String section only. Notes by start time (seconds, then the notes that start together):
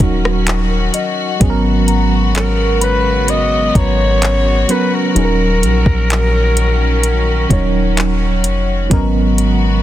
Already playing: D#3 C#4 F#4
1.41 C#3 G#3 B3
5.16 D#3 C#4
8.91 C#3 G#3 B3 F#4